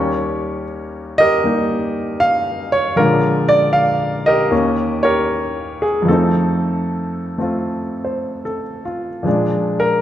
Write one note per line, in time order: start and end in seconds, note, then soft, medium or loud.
0.00 2.95 D#2 soft
0.00 2.97 D#3 soft
0.00 1.43 G3 soft
0.00 3.00 C#4 medium
0.00 1.15 G4 medium
0.00 1.15 A#4 medium
0.00 0.62 C#5 medium
1.18 2.70 G4 medium
1.18 2.70 A#4 medium
1.18 2.24 D#5 loud
1.44 2.98 G3 soft
1.44 2.98 A#3 soft
1.44 2.99 D#4 soft
2.20 2.74 F5 medium
2.72 2.95 C#5 medium
2.96 4.51 A#2 medium
2.96 4.52 D3 medium
2.96 4.51 F3 soft
2.96 4.52 G#3 soft
2.96 4.49 F4 medium
2.96 3.46 A#4 medium
3.49 3.72 D5 medium
3.73 3.85 F5 medium
4.26 5.03 G4 medium
4.26 5.03 A#4 medium
4.26 5.07 D#5 medium
4.50 6.07 D#2 medium
4.50 6.08 D#3 soft
4.50 6.08 A#3 soft
4.50 6.08 C#4 medium
5.03 6.04 G4 medium
5.03 6.04 A#4 medium
5.03 5.84 C#5 medium
5.82 6.08 G#4 medium
6.02 9.23 F2 medium
6.02 9.23 F3 soft
6.08 7.37 A3 medium
6.08 7.38 C4 soft
6.08 8.43 D#4 soft
6.08 8.42 A4 medium
7.38 9.25 A3 soft
7.38 9.26 C4 soft
7.38 8.84 F4 soft
8.04 8.62 C5 soft
8.45 9.09 A4 soft
8.85 9.41 F4 soft
9.23 10.02 A#2 soft
9.23 10.02 F3 soft
9.23 10.02 G#3 soft
9.28 10.02 D4 medium
9.80 10.02 A#4 medium